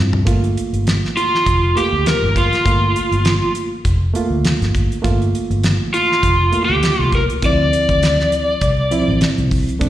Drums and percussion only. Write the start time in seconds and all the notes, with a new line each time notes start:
0.13 floor tom
0.27 kick, closed hi-hat
0.44 closed hi-hat
0.57 closed hi-hat
0.74 closed hi-hat
0.87 snare, closed hi-hat
1.05 snare
1.17 closed hi-hat
1.35 snare
1.46 kick, closed hi-hat
1.77 closed hi-hat
2.06 snare, closed hi-hat
2.36 kick, closed hi-hat
2.53 snare, closed hi-hat
2.65 kick, closed hi-hat
2.96 closed hi-hat
3.12 closed hi-hat
3.25 snare, closed hi-hat
3.55 closed hi-hat
3.85 kick, closed hi-hat
4.15 closed hi-hat
4.45 snare, closed hi-hat
4.62 snare, closed hi-hat
4.75 kick, closed hi-hat
4.92 closed hi-hat
5.04 kick, closed hi-hat
5.22 closed hi-hat
5.35 closed hi-hat
5.51 closed hi-hat
5.63 snare, closed hi-hat
5.94 closed hi-hat
6.12 snare
6.23 kick, closed hi-hat
6.53 closed hi-hat
6.83 snare, closed hi-hat
7.12 kick, closed hi-hat
7.30 closed hi-hat
7.42 kick, closed hi-hat
7.73 closed hi-hat
7.89 kick, closed hi-hat
8.03 snare, closed hi-hat
8.20 snare
8.32 closed hi-hat
8.61 kick, closed hi-hat
8.91 closed hi-hat
9.21 snare, closed hi-hat
9.38 closed hi-hat
9.51 kick, open hi-hat
9.69 closed hi-hat
9.81 kick, closed hi-hat